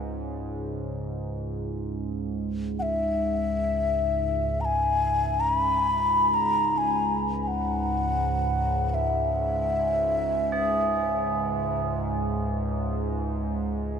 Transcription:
Already playing: synth drone C#2 G#2
1.71 synth drone C#2 G#2
2.79 xiao E5 F#5
4.61 xiao A#5
4.65 xiao G#5
5.40 xiao A#5
5.56 xiao B5
6.34 xiao A#5
6.78 xiao G#5
7.43 xiao G#5
7.48 xiao F#5
8.89 xiao F#5
8.94 xiao E5
10.52 tubular bells G#4

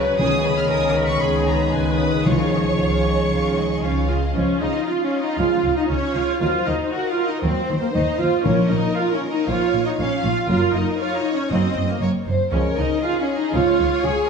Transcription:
Already playing: double bass section C#2, cello section C#3, trombone section C#3 F#3, french horn section C#4 C#5, viola section B4, violin section B4 C#5
0.18 double bass section C#2, cello section C#3, timpani C#3, trombone section D#3 G#3, french horn section B3, viola section G#4, violin section G#4 G#5 D#6
0.45 violin section B4 B5
0.58 violin section F6
0.69 double bass section C#2, cello section C#3, violin section G#4 G#5 D#6, viola section A#4
0.88 violin section D#6
0.95 violin section B4 B5
1.05 violin section C#6
1.21 double bass section C#2, cello section C#3, viola section G#4, violin section G#4 G#5 B5
1.46 violin section B4 A#5 B5
1.73 double bass section C#2, cello section C#3, violin section G#4 G#5, viola section B4
1.97 violin section B4 B5 D#6
2.24 double bass section C#2, cello section C#3, timpani C#3, trombone section F3, french horn section C#4 G#4, violin section F4 F5 C#6, viola section C#5
2.53 violin section G#4 D#5
2.78 double bass section C#2, cello section C#3, violin section F4 F5
3.05 violin section G#4 D#5
3.30 double bass section C#2, cello section C#3, violin section F4 F5
3.57 violin section G#4 D#5
3.82 double bass section C#2, cello section C#3, french horn section C#4, viola section C#4, violin section F4 C#5 F5
4.08 viola section F4, french horn section F4, violin section G#4 D#5 F5
4.34 double bass section C#2, cello section C#3, trombone section F3 G#3, french horn section C#4, viola section C#4, violin section F4 C#5
4.60 double bass section C#2, cello section C#3, french horn section D#4, viola section D#4, violin section D#5
4.85 french horn section F4, viola section F4, violin section F5
5.03 french horn section C#4, viola section C#4, violin section C#5
5.20 viola section D#4, french horn section D#4, violin section D#5
5.35 double bass section C#2, cello section C#3, trombone section F3 G#3, french horn section F4, viola section F4, violin section F5
5.64 double bass section C#2, cello section C#3
5.76 viola section D#4, french horn section D#4, violin section D#5
5.88 double bass section C#2, cello section C#3, french horn section C#4, viola section C#4, violin section C#5
6.14 double bass section C#2, cello section C#3, french horn section F4, viola section F4, violin section F5
6.40 double bass section D#2, cello section D#3, trombone section F#3 A#3, french horn section F4, viola section F4, violin section C5 F5
6.65 double bass section D#2, cello section D#3, french horn section D#4, viola section D#4, violin section D#5
6.91 french horn section F#4, viola section F#4, violin section A#4 F#5
7.08 viola section F4, french horn section F4, violin section F5
7.24 viola section D#4, french horn section D#4, violin section D#5
7.41 double bass section D#2, cello section D#3, trombone section F#3 A#3, french horn section C4, viola section C4, violin section C5
7.69 double bass section D#2, cello section D#3
7.80 viola section A#3, french horn section A#3, violin section A#4
7.92 double bass section D#2, cello section D#3, french horn section D#4, viola section D#4, violin section D#5
8.19 double bass section D#2, cello section D#3, french horn section F4, viola section F4, violin section F5
8.43 double bass section A#1, cello section A#2, timpani A#2, trombone section F3 A#3, viola section C#4, french horn section C#4, violin section A#4 C#5
8.69 double bass section A#1, cello section A#2, viola section D#4, french horn section D#4, violin section D#5
8.95 viola section F4, french horn section F4, violin section F5
9.11 viola section C#4, violin section C#5
9.15 french horn section C#4
9.28 viola section D#4, french horn section D#4, violin section D#5
9.45 double bass section A#1, cello section A#2, trombone section F3 A#3, viola section F4, violin section C#5 F5
9.49 french horn section F4
9.73 double bass section A#1, cello section A#2
9.84 viola section D#4, french horn section D#4, violin section D#5
9.97 double bass section A#1, cello section A#2, viola section C#4, violin section C#5 F5
10.01 french horn section C#4
10.22 double bass section A#1, cello section A#2, viola section F4, french horn section F4, violin section F5
10.49 double bass section F#1, cello section F#2, trombone section F#3 A#3, viola section F4, french horn section F4, violin section A#4 F5
10.74 double bass section F#1, cello section F#2, french horn section D#4, viola section D#4, violin section D#5
10.99 viola section F4, french horn section F4, violin section C#5 F5
11.16 viola section D#4, violin section D#5
11.20 french horn section D#4
11.33 viola section C#4, french horn section C#4, violin section C#5
11.50 double bass section F#1, cello section F#2, trombone section F#3 A#3, viola section C4, french horn section C4, violin section C5 D#5
11.76 double bass section F#1, cello section F#2
11.88 viola section A#3, french horn section A#3, violin section A#4
12.01 double bass section F#1, cello section F#2, violin section C#5
12.26 double bass section F#1, cello section F#2, violin section C5
12.51 double bass section C#2, cello section C#3, trombone section F3 G#3, viola section C#4, french horn section C#4, violin section A#4 C#5
12.77 double bass section C#2, cello section C#3, viola section D#4, french horn section D#4, violin section D#5
13.03 viola section F4, french horn section F4, violin section G#4 F5
13.18 viola section C#4, violin section C#5
13.23 french horn section C#4
13.36 viola section D#4, french horn section D#4, violin section D#5
13.53 double bass section C#2, cello section C#3, trombone section F3 G#3, viola section F4, french horn section F4, violin section C#5 F5
13.79 double bass section C#2, cello section C#3
14.04 double bass section C#2, cello section C#3, viola section G#4, french horn section G#4, violin section G#5

